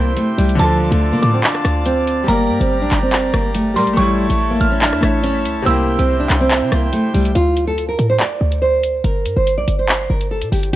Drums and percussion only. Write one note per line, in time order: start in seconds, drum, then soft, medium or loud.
0.17 closed hi-hat medium
0.38 open hi-hat medium
0.49 closed hi-hat loud
0.59 closed hi-hat medium
0.92 closed hi-hat medium
1.23 closed hi-hat medium
1.44 clap loud
1.55 cross-stick medium
1.65 cross-stick loud
1.65 closed hi-hat medium
1.86 closed hi-hat medium
2.07 closed hi-hat medium
2.28 closed hi-hat medium
2.61 closed hi-hat medium
2.91 clap medium
2.91 closed hi-hat medium
3.12 clap loud
3.12 closed hi-hat medium
3.34 cross-stick loud
3.34 closed hi-hat medium
3.55 closed hi-hat medium
3.76 open hi-hat medium
3.87 closed hi-hat medium
3.97 closed hi-hat medium
4.30 closed hi-hat medium
4.61 closed hi-hat medium
4.82 clap loud
4.93 cross-stick medium
5.03 cross-stick loud
5.03 closed hi-hat medium
5.24 closed hi-hat medium
5.45 closed hi-hat medium
5.66 closed hi-hat medium
5.99 closed hi-hat medium
6.30 clap medium
6.30 closed hi-hat medium
6.50 clap loud
6.50 closed hi-hat medium
6.72 cross-stick loud
6.72 closed hi-hat medium
6.93 closed hi-hat medium
7.14 open hi-hat medium
7.25 closed hi-hat medium
7.35 closed hi-hat medium
7.57 closed hi-hat medium
7.78 closed hi-hat medium
7.99 closed hi-hat medium
8.20 clap loud
8.52 closed hi-hat medium
8.83 closed hi-hat medium
9.04 closed hi-hat medium
9.26 closed hi-hat medium
9.47 closed hi-hat medium
9.68 closed hi-hat medium
9.89 clap loud
10.21 closed hi-hat medium
10.42 closed hi-hat medium
10.52 open hi-hat medium
10.63 closed hi-hat medium